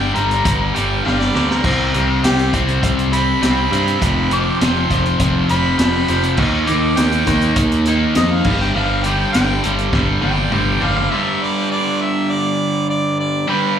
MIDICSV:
0, 0, Header, 1, 5, 480
1, 0, Start_track
1, 0, Tempo, 592300
1, 1328, Time_signature, 4, 2, 24, 8
1, 11179, End_track
2, 0, Start_track
2, 0, Title_t, "Harmonica"
2, 0, Program_c, 0, 22
2, 0, Note_on_c, 0, 79, 105
2, 112, Note_off_c, 0, 79, 0
2, 116, Note_on_c, 0, 82, 85
2, 606, Note_on_c, 0, 79, 81
2, 618, Note_off_c, 0, 82, 0
2, 840, Note_on_c, 0, 77, 80
2, 852, Note_off_c, 0, 79, 0
2, 955, Note_off_c, 0, 77, 0
2, 968, Note_on_c, 0, 74, 91
2, 1201, Note_off_c, 0, 74, 0
2, 1216, Note_on_c, 0, 70, 84
2, 1796, Note_off_c, 0, 70, 0
2, 1813, Note_on_c, 0, 67, 120
2, 2045, Note_off_c, 0, 67, 0
2, 2531, Note_on_c, 0, 83, 104
2, 2765, Note_off_c, 0, 83, 0
2, 2790, Note_on_c, 0, 83, 92
2, 3481, Note_off_c, 0, 83, 0
2, 3507, Note_on_c, 0, 86, 100
2, 3728, Note_on_c, 0, 84, 121
2, 3740, Note_off_c, 0, 86, 0
2, 4197, Note_off_c, 0, 84, 0
2, 4459, Note_on_c, 0, 83, 111
2, 4682, Note_off_c, 0, 83, 0
2, 4686, Note_on_c, 0, 83, 94
2, 5156, Note_off_c, 0, 83, 0
2, 5409, Note_on_c, 0, 86, 101
2, 5657, Note_on_c, 0, 79, 127
2, 5670, Note_off_c, 0, 86, 0
2, 6122, Note_off_c, 0, 79, 0
2, 6616, Note_on_c, 0, 75, 107
2, 6746, Note_on_c, 0, 77, 89
2, 6758, Note_off_c, 0, 75, 0
2, 6971, Note_off_c, 0, 77, 0
2, 6976, Note_on_c, 0, 79, 102
2, 7082, Note_off_c, 0, 79, 0
2, 7086, Note_on_c, 0, 77, 94
2, 7327, Note_on_c, 0, 79, 90
2, 7339, Note_off_c, 0, 77, 0
2, 7551, Note_off_c, 0, 79, 0
2, 7556, Note_on_c, 0, 79, 123
2, 7797, Note_off_c, 0, 79, 0
2, 8284, Note_on_c, 0, 79, 92
2, 8773, Note_on_c, 0, 77, 91
2, 8786, Note_off_c, 0, 79, 0
2, 9001, Note_on_c, 0, 76, 94
2, 9013, Note_off_c, 0, 77, 0
2, 9261, Note_on_c, 0, 74, 91
2, 9273, Note_off_c, 0, 76, 0
2, 9485, Note_off_c, 0, 74, 0
2, 9490, Note_on_c, 0, 74, 97
2, 9735, Note_on_c, 0, 76, 91
2, 9747, Note_off_c, 0, 74, 0
2, 9975, Note_on_c, 0, 74, 96
2, 9988, Note_off_c, 0, 76, 0
2, 10447, Note_off_c, 0, 74, 0
2, 10452, Note_on_c, 0, 74, 94
2, 10671, Note_off_c, 0, 74, 0
2, 10694, Note_on_c, 0, 74, 93
2, 10943, Note_on_c, 0, 71, 90
2, 10955, Note_off_c, 0, 74, 0
2, 11171, Note_off_c, 0, 71, 0
2, 11179, End_track
3, 0, Start_track
3, 0, Title_t, "Overdriven electric guitar"
3, 0, Program_c, 1, 29
3, 0, Note_on_c, 1, 43, 90
3, 0, Note_on_c, 1, 50, 115
3, 0, Note_on_c, 1, 55, 123
3, 105, Note_off_c, 1, 43, 0
3, 109, Note_off_c, 1, 50, 0
3, 115, Note_on_c, 1, 43, 80
3, 118, Note_off_c, 1, 55, 0
3, 118, Note_on_c, 1, 50, 83
3, 122, Note_on_c, 1, 55, 86
3, 351, Note_off_c, 1, 43, 0
3, 358, Note_off_c, 1, 50, 0
3, 359, Note_off_c, 1, 55, 0
3, 361, Note_on_c, 1, 43, 98
3, 367, Note_on_c, 1, 50, 113
3, 369, Note_on_c, 1, 55, 105
3, 596, Note_off_c, 1, 43, 0
3, 600, Note_off_c, 1, 50, 0
3, 603, Note_off_c, 1, 55, 0
3, 605, Note_on_c, 1, 43, 81
3, 609, Note_on_c, 1, 50, 85
3, 613, Note_on_c, 1, 55, 91
3, 841, Note_off_c, 1, 43, 0
3, 849, Note_off_c, 1, 50, 0
3, 851, Note_off_c, 1, 55, 0
3, 851, Note_on_c, 1, 43, 98
3, 859, Note_on_c, 1, 50, 97
3, 861, Note_on_c, 1, 55, 109
3, 1081, Note_off_c, 1, 43, 0
3, 1090, Note_off_c, 1, 50, 0
3, 1090, Note_on_c, 1, 43, 81
3, 1091, Note_off_c, 1, 55, 0
3, 1099, Note_on_c, 1, 50, 83
3, 1101, Note_on_c, 1, 55, 86
3, 1315, Note_off_c, 1, 43, 0
3, 1320, Note_off_c, 1, 50, 0
3, 1320, Note_off_c, 1, 55, 0
3, 1331, Note_on_c, 1, 48, 93
3, 1335, Note_on_c, 1, 55, 99
3, 1341, Note_on_c, 1, 60, 113
3, 1564, Note_off_c, 1, 48, 0
3, 1570, Note_off_c, 1, 55, 0
3, 1574, Note_on_c, 1, 48, 87
3, 1577, Note_off_c, 1, 60, 0
3, 1580, Note_on_c, 1, 55, 87
3, 1580, Note_on_c, 1, 60, 90
3, 1806, Note_off_c, 1, 48, 0
3, 1812, Note_off_c, 1, 55, 0
3, 1816, Note_on_c, 1, 48, 102
3, 1822, Note_off_c, 1, 60, 0
3, 1822, Note_on_c, 1, 55, 104
3, 1826, Note_on_c, 1, 60, 124
3, 2047, Note_off_c, 1, 48, 0
3, 2047, Note_off_c, 1, 55, 0
3, 2056, Note_on_c, 1, 48, 78
3, 2057, Note_on_c, 1, 55, 77
3, 2058, Note_off_c, 1, 60, 0
3, 2061, Note_on_c, 1, 60, 97
3, 2279, Note_off_c, 1, 48, 0
3, 2284, Note_off_c, 1, 55, 0
3, 2288, Note_off_c, 1, 60, 0
3, 2289, Note_on_c, 1, 48, 93
3, 2294, Note_on_c, 1, 55, 100
3, 2298, Note_on_c, 1, 60, 113
3, 2517, Note_off_c, 1, 48, 0
3, 2523, Note_off_c, 1, 55, 0
3, 2527, Note_on_c, 1, 48, 76
3, 2529, Note_off_c, 1, 60, 0
3, 2533, Note_on_c, 1, 55, 81
3, 2539, Note_on_c, 1, 60, 92
3, 2760, Note_off_c, 1, 55, 0
3, 2763, Note_off_c, 1, 48, 0
3, 2768, Note_off_c, 1, 60, 0
3, 2769, Note_on_c, 1, 55, 109
3, 2773, Note_on_c, 1, 48, 92
3, 2777, Note_on_c, 1, 60, 102
3, 3006, Note_off_c, 1, 48, 0
3, 3006, Note_off_c, 1, 55, 0
3, 3014, Note_off_c, 1, 60, 0
3, 3015, Note_on_c, 1, 48, 83
3, 3015, Note_on_c, 1, 55, 88
3, 3023, Note_on_c, 1, 60, 98
3, 3240, Note_off_c, 1, 48, 0
3, 3240, Note_off_c, 1, 55, 0
3, 3244, Note_off_c, 1, 60, 0
3, 3251, Note_on_c, 1, 41, 99
3, 3256, Note_on_c, 1, 48, 98
3, 3259, Note_on_c, 1, 53, 113
3, 3485, Note_off_c, 1, 41, 0
3, 3492, Note_off_c, 1, 48, 0
3, 3495, Note_on_c, 1, 41, 79
3, 3502, Note_off_c, 1, 53, 0
3, 3502, Note_on_c, 1, 48, 93
3, 3505, Note_on_c, 1, 53, 93
3, 3729, Note_off_c, 1, 41, 0
3, 3733, Note_off_c, 1, 48, 0
3, 3738, Note_on_c, 1, 41, 109
3, 3742, Note_on_c, 1, 48, 120
3, 3743, Note_off_c, 1, 53, 0
3, 3747, Note_on_c, 1, 53, 113
3, 3970, Note_off_c, 1, 41, 0
3, 3978, Note_off_c, 1, 48, 0
3, 3980, Note_off_c, 1, 53, 0
3, 3980, Note_on_c, 1, 41, 86
3, 3988, Note_on_c, 1, 48, 83
3, 3990, Note_on_c, 1, 53, 98
3, 4201, Note_off_c, 1, 41, 0
3, 4210, Note_off_c, 1, 48, 0
3, 4210, Note_off_c, 1, 53, 0
3, 4211, Note_on_c, 1, 41, 100
3, 4220, Note_on_c, 1, 48, 103
3, 4220, Note_on_c, 1, 53, 111
3, 4446, Note_off_c, 1, 41, 0
3, 4448, Note_off_c, 1, 48, 0
3, 4452, Note_off_c, 1, 53, 0
3, 4455, Note_on_c, 1, 41, 77
3, 4458, Note_on_c, 1, 48, 86
3, 4462, Note_on_c, 1, 53, 90
3, 4682, Note_off_c, 1, 41, 0
3, 4682, Note_off_c, 1, 48, 0
3, 4684, Note_off_c, 1, 53, 0
3, 4692, Note_on_c, 1, 41, 103
3, 4692, Note_on_c, 1, 48, 96
3, 4694, Note_on_c, 1, 53, 110
3, 4928, Note_off_c, 1, 41, 0
3, 4929, Note_off_c, 1, 48, 0
3, 4930, Note_off_c, 1, 53, 0
3, 4937, Note_on_c, 1, 41, 83
3, 4939, Note_on_c, 1, 48, 90
3, 4939, Note_on_c, 1, 53, 93
3, 5162, Note_off_c, 1, 41, 0
3, 5163, Note_off_c, 1, 48, 0
3, 5163, Note_off_c, 1, 53, 0
3, 5174, Note_on_c, 1, 51, 95
3, 5181, Note_on_c, 1, 58, 104
3, 5184, Note_on_c, 1, 63, 102
3, 5391, Note_off_c, 1, 51, 0
3, 5393, Note_off_c, 1, 58, 0
3, 5399, Note_off_c, 1, 63, 0
3, 5401, Note_on_c, 1, 51, 89
3, 5403, Note_on_c, 1, 58, 89
3, 5409, Note_on_c, 1, 63, 95
3, 5635, Note_off_c, 1, 51, 0
3, 5637, Note_off_c, 1, 58, 0
3, 5642, Note_off_c, 1, 63, 0
3, 5644, Note_on_c, 1, 51, 101
3, 5647, Note_on_c, 1, 58, 115
3, 5652, Note_on_c, 1, 63, 113
3, 5883, Note_off_c, 1, 51, 0
3, 5888, Note_off_c, 1, 58, 0
3, 5890, Note_off_c, 1, 63, 0
3, 5892, Note_on_c, 1, 51, 91
3, 5898, Note_on_c, 1, 58, 88
3, 5900, Note_on_c, 1, 63, 92
3, 6122, Note_off_c, 1, 51, 0
3, 6123, Note_off_c, 1, 58, 0
3, 6128, Note_off_c, 1, 63, 0
3, 6132, Note_on_c, 1, 51, 106
3, 6133, Note_on_c, 1, 58, 95
3, 6137, Note_on_c, 1, 63, 109
3, 6367, Note_off_c, 1, 51, 0
3, 6374, Note_off_c, 1, 58, 0
3, 6377, Note_on_c, 1, 51, 86
3, 6378, Note_off_c, 1, 63, 0
3, 6384, Note_on_c, 1, 58, 85
3, 6388, Note_on_c, 1, 63, 90
3, 6597, Note_off_c, 1, 51, 0
3, 6606, Note_off_c, 1, 58, 0
3, 6607, Note_on_c, 1, 51, 101
3, 6608, Note_off_c, 1, 63, 0
3, 6616, Note_on_c, 1, 58, 101
3, 6618, Note_on_c, 1, 63, 115
3, 6837, Note_off_c, 1, 51, 0
3, 6841, Note_off_c, 1, 58, 0
3, 6842, Note_off_c, 1, 63, 0
3, 6856, Note_on_c, 1, 43, 98
3, 6864, Note_on_c, 1, 50, 93
3, 6865, Note_on_c, 1, 55, 110
3, 7086, Note_off_c, 1, 43, 0
3, 7090, Note_off_c, 1, 50, 0
3, 7092, Note_off_c, 1, 55, 0
3, 7096, Note_on_c, 1, 43, 99
3, 7100, Note_on_c, 1, 50, 102
3, 7102, Note_on_c, 1, 55, 101
3, 7329, Note_off_c, 1, 43, 0
3, 7334, Note_off_c, 1, 50, 0
3, 7337, Note_off_c, 1, 55, 0
3, 7339, Note_on_c, 1, 43, 84
3, 7344, Note_on_c, 1, 50, 95
3, 7347, Note_on_c, 1, 55, 99
3, 7568, Note_off_c, 1, 43, 0
3, 7575, Note_off_c, 1, 55, 0
3, 7576, Note_off_c, 1, 50, 0
3, 7578, Note_on_c, 1, 43, 114
3, 7585, Note_on_c, 1, 50, 117
3, 7585, Note_on_c, 1, 55, 108
3, 7810, Note_off_c, 1, 43, 0
3, 7811, Note_off_c, 1, 50, 0
3, 7813, Note_off_c, 1, 55, 0
3, 7819, Note_on_c, 1, 43, 82
3, 7821, Note_on_c, 1, 50, 87
3, 7823, Note_on_c, 1, 55, 93
3, 8040, Note_off_c, 1, 43, 0
3, 8046, Note_off_c, 1, 50, 0
3, 8047, Note_off_c, 1, 55, 0
3, 8049, Note_on_c, 1, 43, 99
3, 8056, Note_on_c, 1, 50, 109
3, 8057, Note_on_c, 1, 55, 118
3, 8276, Note_off_c, 1, 43, 0
3, 8276, Note_off_c, 1, 50, 0
3, 8281, Note_off_c, 1, 55, 0
3, 8285, Note_on_c, 1, 43, 86
3, 8286, Note_on_c, 1, 50, 86
3, 8291, Note_on_c, 1, 55, 95
3, 8513, Note_off_c, 1, 43, 0
3, 8519, Note_off_c, 1, 50, 0
3, 8521, Note_off_c, 1, 55, 0
3, 8522, Note_on_c, 1, 43, 110
3, 8529, Note_on_c, 1, 50, 112
3, 8531, Note_on_c, 1, 55, 113
3, 8749, Note_off_c, 1, 43, 0
3, 8756, Note_off_c, 1, 50, 0
3, 8759, Note_on_c, 1, 43, 90
3, 8760, Note_off_c, 1, 55, 0
3, 8766, Note_on_c, 1, 50, 92
3, 8769, Note_on_c, 1, 55, 95
3, 8990, Note_off_c, 1, 43, 0
3, 8994, Note_off_c, 1, 50, 0
3, 8995, Note_off_c, 1, 55, 0
3, 9008, Note_on_c, 1, 43, 93
3, 9018, Note_on_c, 1, 50, 107
3, 9024, Note_on_c, 1, 55, 113
3, 10907, Note_off_c, 1, 43, 0
3, 10912, Note_off_c, 1, 50, 0
3, 10915, Note_off_c, 1, 55, 0
3, 10919, Note_on_c, 1, 43, 105
3, 10930, Note_on_c, 1, 50, 96
3, 10941, Note_on_c, 1, 55, 106
3, 11179, Note_off_c, 1, 43, 0
3, 11179, Note_off_c, 1, 50, 0
3, 11179, Note_off_c, 1, 55, 0
3, 11179, End_track
4, 0, Start_track
4, 0, Title_t, "Picked electric bass"
4, 0, Program_c, 2, 34
4, 0, Note_on_c, 2, 31, 87
4, 90, Note_off_c, 2, 31, 0
4, 138, Note_on_c, 2, 31, 94
4, 329, Note_off_c, 2, 31, 0
4, 369, Note_on_c, 2, 31, 89
4, 564, Note_off_c, 2, 31, 0
4, 624, Note_on_c, 2, 31, 89
4, 813, Note_off_c, 2, 31, 0
4, 864, Note_on_c, 2, 31, 93
4, 1053, Note_off_c, 2, 31, 0
4, 1103, Note_on_c, 2, 38, 92
4, 1293, Note_off_c, 2, 38, 0
4, 1333, Note_on_c, 2, 36, 89
4, 1527, Note_off_c, 2, 36, 0
4, 1585, Note_on_c, 2, 36, 87
4, 1774, Note_off_c, 2, 36, 0
4, 1819, Note_on_c, 2, 36, 91
4, 2011, Note_off_c, 2, 36, 0
4, 2057, Note_on_c, 2, 36, 91
4, 2250, Note_off_c, 2, 36, 0
4, 2299, Note_on_c, 2, 36, 82
4, 2688, Note_off_c, 2, 36, 0
4, 2776, Note_on_c, 2, 36, 95
4, 2971, Note_off_c, 2, 36, 0
4, 3009, Note_on_c, 2, 43, 85
4, 3206, Note_off_c, 2, 43, 0
4, 3257, Note_on_c, 2, 29, 93
4, 3647, Note_off_c, 2, 29, 0
4, 3739, Note_on_c, 2, 29, 92
4, 3933, Note_off_c, 2, 29, 0
4, 3981, Note_on_c, 2, 29, 92
4, 4174, Note_off_c, 2, 29, 0
4, 4216, Note_on_c, 2, 29, 92
4, 4411, Note_off_c, 2, 29, 0
4, 4461, Note_on_c, 2, 29, 85
4, 4654, Note_off_c, 2, 29, 0
4, 4697, Note_on_c, 2, 29, 92
4, 4892, Note_off_c, 2, 29, 0
4, 4941, Note_on_c, 2, 29, 92
4, 5173, Note_on_c, 2, 39, 98
4, 5185, Note_off_c, 2, 29, 0
4, 5369, Note_off_c, 2, 39, 0
4, 5426, Note_on_c, 2, 39, 82
4, 5618, Note_off_c, 2, 39, 0
4, 5659, Note_on_c, 2, 39, 100
4, 5853, Note_off_c, 2, 39, 0
4, 5892, Note_on_c, 2, 39, 101
4, 6089, Note_off_c, 2, 39, 0
4, 6129, Note_on_c, 2, 39, 86
4, 6523, Note_off_c, 2, 39, 0
4, 6625, Note_on_c, 2, 41, 99
4, 6817, Note_off_c, 2, 41, 0
4, 6852, Note_on_c, 2, 31, 97
4, 7049, Note_off_c, 2, 31, 0
4, 7099, Note_on_c, 2, 31, 95
4, 7488, Note_off_c, 2, 31, 0
4, 7581, Note_on_c, 2, 31, 94
4, 7774, Note_off_c, 2, 31, 0
4, 7825, Note_on_c, 2, 31, 96
4, 8016, Note_off_c, 2, 31, 0
4, 8052, Note_on_c, 2, 31, 98
4, 8248, Note_off_c, 2, 31, 0
4, 8299, Note_on_c, 2, 31, 93
4, 8491, Note_off_c, 2, 31, 0
4, 8534, Note_on_c, 2, 31, 94
4, 8728, Note_off_c, 2, 31, 0
4, 8779, Note_on_c, 2, 31, 92
4, 8971, Note_off_c, 2, 31, 0
4, 11179, End_track
5, 0, Start_track
5, 0, Title_t, "Drums"
5, 126, Note_on_c, 9, 42, 72
5, 207, Note_off_c, 9, 42, 0
5, 250, Note_on_c, 9, 42, 42
5, 331, Note_off_c, 9, 42, 0
5, 367, Note_on_c, 9, 36, 114
5, 367, Note_on_c, 9, 42, 98
5, 448, Note_off_c, 9, 36, 0
5, 448, Note_off_c, 9, 42, 0
5, 614, Note_on_c, 9, 42, 73
5, 695, Note_off_c, 9, 42, 0
5, 864, Note_on_c, 9, 38, 60
5, 945, Note_off_c, 9, 38, 0
5, 979, Note_on_c, 9, 38, 70
5, 1060, Note_off_c, 9, 38, 0
5, 1095, Note_on_c, 9, 38, 92
5, 1176, Note_off_c, 9, 38, 0
5, 1218, Note_on_c, 9, 38, 92
5, 1299, Note_off_c, 9, 38, 0
5, 1330, Note_on_c, 9, 36, 114
5, 1333, Note_on_c, 9, 49, 102
5, 1411, Note_off_c, 9, 36, 0
5, 1414, Note_off_c, 9, 49, 0
5, 1574, Note_on_c, 9, 42, 75
5, 1655, Note_off_c, 9, 42, 0
5, 1815, Note_on_c, 9, 42, 92
5, 1821, Note_on_c, 9, 38, 101
5, 1896, Note_off_c, 9, 42, 0
5, 1902, Note_off_c, 9, 38, 0
5, 1937, Note_on_c, 9, 42, 45
5, 2018, Note_off_c, 9, 42, 0
5, 2052, Note_on_c, 9, 36, 87
5, 2054, Note_on_c, 9, 42, 81
5, 2133, Note_off_c, 9, 36, 0
5, 2135, Note_off_c, 9, 42, 0
5, 2175, Note_on_c, 9, 42, 45
5, 2256, Note_off_c, 9, 42, 0
5, 2294, Note_on_c, 9, 36, 108
5, 2297, Note_on_c, 9, 42, 102
5, 2375, Note_off_c, 9, 36, 0
5, 2378, Note_off_c, 9, 42, 0
5, 2421, Note_on_c, 9, 42, 43
5, 2502, Note_off_c, 9, 42, 0
5, 2535, Note_on_c, 9, 42, 75
5, 2617, Note_off_c, 9, 42, 0
5, 2777, Note_on_c, 9, 42, 93
5, 2783, Note_on_c, 9, 38, 101
5, 2858, Note_off_c, 9, 42, 0
5, 2864, Note_off_c, 9, 38, 0
5, 3021, Note_on_c, 9, 42, 79
5, 3102, Note_off_c, 9, 42, 0
5, 3140, Note_on_c, 9, 42, 51
5, 3221, Note_off_c, 9, 42, 0
5, 3255, Note_on_c, 9, 36, 115
5, 3258, Note_on_c, 9, 42, 96
5, 3336, Note_off_c, 9, 36, 0
5, 3339, Note_off_c, 9, 42, 0
5, 3493, Note_on_c, 9, 42, 71
5, 3574, Note_off_c, 9, 42, 0
5, 3738, Note_on_c, 9, 42, 85
5, 3743, Note_on_c, 9, 38, 116
5, 3819, Note_off_c, 9, 42, 0
5, 3824, Note_off_c, 9, 38, 0
5, 3975, Note_on_c, 9, 36, 91
5, 3975, Note_on_c, 9, 42, 74
5, 4056, Note_off_c, 9, 36, 0
5, 4057, Note_off_c, 9, 42, 0
5, 4097, Note_on_c, 9, 42, 41
5, 4178, Note_off_c, 9, 42, 0
5, 4210, Note_on_c, 9, 42, 103
5, 4212, Note_on_c, 9, 36, 107
5, 4291, Note_off_c, 9, 42, 0
5, 4293, Note_off_c, 9, 36, 0
5, 4451, Note_on_c, 9, 42, 69
5, 4532, Note_off_c, 9, 42, 0
5, 4690, Note_on_c, 9, 42, 90
5, 4696, Note_on_c, 9, 38, 108
5, 4771, Note_off_c, 9, 42, 0
5, 4777, Note_off_c, 9, 38, 0
5, 4929, Note_on_c, 9, 42, 78
5, 5010, Note_off_c, 9, 42, 0
5, 5052, Note_on_c, 9, 42, 52
5, 5133, Note_off_c, 9, 42, 0
5, 5165, Note_on_c, 9, 49, 99
5, 5170, Note_on_c, 9, 36, 113
5, 5246, Note_off_c, 9, 49, 0
5, 5251, Note_off_c, 9, 36, 0
5, 5407, Note_on_c, 9, 42, 76
5, 5488, Note_off_c, 9, 42, 0
5, 5648, Note_on_c, 9, 42, 96
5, 5654, Note_on_c, 9, 38, 111
5, 5729, Note_off_c, 9, 42, 0
5, 5735, Note_off_c, 9, 38, 0
5, 5772, Note_on_c, 9, 42, 51
5, 5853, Note_off_c, 9, 42, 0
5, 5890, Note_on_c, 9, 42, 81
5, 5891, Note_on_c, 9, 36, 85
5, 5896, Note_on_c, 9, 38, 36
5, 5971, Note_off_c, 9, 42, 0
5, 5972, Note_off_c, 9, 36, 0
5, 5977, Note_off_c, 9, 38, 0
5, 6008, Note_on_c, 9, 42, 46
5, 6089, Note_off_c, 9, 42, 0
5, 6126, Note_on_c, 9, 42, 109
5, 6129, Note_on_c, 9, 36, 114
5, 6207, Note_off_c, 9, 42, 0
5, 6210, Note_off_c, 9, 36, 0
5, 6253, Note_on_c, 9, 42, 48
5, 6334, Note_off_c, 9, 42, 0
5, 6365, Note_on_c, 9, 42, 80
5, 6446, Note_off_c, 9, 42, 0
5, 6605, Note_on_c, 9, 42, 93
5, 6611, Note_on_c, 9, 38, 109
5, 6686, Note_off_c, 9, 42, 0
5, 6692, Note_off_c, 9, 38, 0
5, 6844, Note_on_c, 9, 57, 106
5, 6848, Note_on_c, 9, 36, 108
5, 6925, Note_off_c, 9, 57, 0
5, 6929, Note_off_c, 9, 36, 0
5, 6977, Note_on_c, 9, 38, 34
5, 7058, Note_off_c, 9, 38, 0
5, 7324, Note_on_c, 9, 42, 73
5, 7405, Note_off_c, 9, 42, 0
5, 7570, Note_on_c, 9, 42, 91
5, 7576, Note_on_c, 9, 38, 107
5, 7651, Note_off_c, 9, 42, 0
5, 7657, Note_off_c, 9, 38, 0
5, 7809, Note_on_c, 9, 42, 81
5, 7890, Note_off_c, 9, 42, 0
5, 7930, Note_on_c, 9, 42, 43
5, 8011, Note_off_c, 9, 42, 0
5, 8047, Note_on_c, 9, 36, 126
5, 8049, Note_on_c, 9, 38, 67
5, 8128, Note_off_c, 9, 36, 0
5, 8130, Note_off_c, 9, 38, 0
5, 8283, Note_on_c, 9, 48, 71
5, 8364, Note_off_c, 9, 48, 0
5, 8406, Note_on_c, 9, 48, 72
5, 8487, Note_off_c, 9, 48, 0
5, 8524, Note_on_c, 9, 47, 81
5, 8605, Note_off_c, 9, 47, 0
5, 8767, Note_on_c, 9, 43, 99
5, 8848, Note_off_c, 9, 43, 0
5, 8884, Note_on_c, 9, 43, 100
5, 8965, Note_off_c, 9, 43, 0
5, 11179, End_track
0, 0, End_of_file